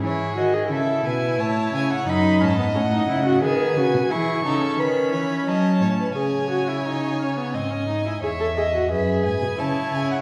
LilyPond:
<<
  \new Staff \with { instrumentName = "Violin" } { \time 3/4 \key e \major \tempo 4 = 88 cis''8 dis''8 e''8 gis''8 a''8 gis''16 fis''16 | b''8 a''8 fis''4 gis''4 | \key cis \minor cis'''4 b''4 a''4 | gis''2 gis''4 |
cis''8 dis''8 e''8 gis''8 a''8 gis''16 fis''16 | }
  \new Staff \with { instrumentName = "Violin" } { \time 3/4 \key e \major gis'4 a'8 b'8 cis''4 | dis''2 b'4 | \key cis \minor gis'8 a'8 b'8 cis''8 dis''8 cis''16 b'16 | cis''2 dis''4 |
e''4 b'4 cis''4 | }
  \new Staff \with { instrumentName = "Viola" } { \time 3/4 \key e \major e'8 fis'16 gis'16 e'2 | dis'8 cis'16 b16 cis'16 dis'16 e'16 fis'16 gis'8 fis'8 | \key cis \minor e'8 dis'16 cis'2~ cis'16 | gis'8 fis'16 e'16 dis'8 cis'16 b16 bis16 cis'16 dis'16 e'16 |
gis'16 a'16 gis'16 fis'16 gis'4 e'4 | }
  \new Staff \with { instrumentName = "Cello" } { \clef bass \time 3/4 \key e \major e8 dis8 cis8 b,8 a,8 cis8 | fis,8 gis,8 a,8 cis8 dis8 cis16 b,16 | \key cis \minor e8 cis8 dis8 e8 fis8 a,8 | cis2 gis,4 |
e,4 fis,8 gis,16 b,16 cis8 cis8 | }
>>